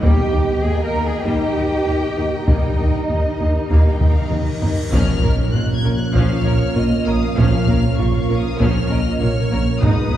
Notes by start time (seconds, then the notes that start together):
0.00 D#2 G3 A#3 D#4 G4 A#4 D#5 G5, taiko
0.31 D#2 B2 D#3 A#3 D#4
0.62 D#2 A#3 G#4 G#5
0.84 A#4 A#5
0.94 D#2 A#3 D#4
1.05 G#4 G#5
1.23 D#2 G3 A#3 D#4 G4 G5, taiko
1.55 D#2 A#3 D#4
1.84 D#2 B2 D#3 A#3
2.16 D#2 D#3 A#3 D#4
2.45 D#2 G3 A#3 D#4 D#5, taiko, cymbal swell
2.77 D#2 D#3 A#3 D#4
3.08 D#2 A#3 D#5
3.39 D#2 A#3 D#4
3.70 D#2 G3 A#3 F5, taiko
3.91 G5
4.00 D#2 A#3 D#4, taiko mid
4.12 F5
4.31 D#2 D#3 A#3 D#5, taiko mid
4.61 D#2 D#3 A#3 D#4, taiko low
4.92 A#1 A#2 F3 A#3 C#4 F4 A#4 C#5 F6, taiko, impact
5.23 A#1 A#2 A#3 C#4 A#4, taiko low-mid
5.53 A#1 A#2 A#3 F4 F#6, taiko low-mid
5.74 G#6
5.83 A#1 A#2 C#4 A#4
5.94 F#6
6.13 A#1 A#2 F3 C#4 F5 F6, taiko
6.44 A#1 A#2 C#4 A#4 C#5
6.75 A#1 A#2 A#3 F4 D#5, taiko low-mid
7.06 A#1 A#2 A#3 C#4 A#4 F5 D#6
7.36 A#1 A#2 F3 C#4 F6, taiko
7.68 A#1 A#2 A#3 C#4 A#4, taiko low-mid
7.97 A#1 A#2 A#3 F4 F5 C#6, taiko low-mid
8.18 C#6
8.29 A#1 A#2 C#4 A#4
8.40 D#6
8.59 A#1 A#2 F3 C#4 C#5 F6, taiko
8.90 A#1 A#2 C#4 A#4 D#5
9.19 A#1 A#2 A#3 F4 C#5 F6, taiko low-mid
9.51 A#1 A#2 A#3 C#4 A#4
9.82 G#1 G#2 D#3 G#3 B3 D#4 G#4 B4 D#5 D#6, taiko
10.13 G#1 G#2 G#3 D#4 B4, taiko low-mid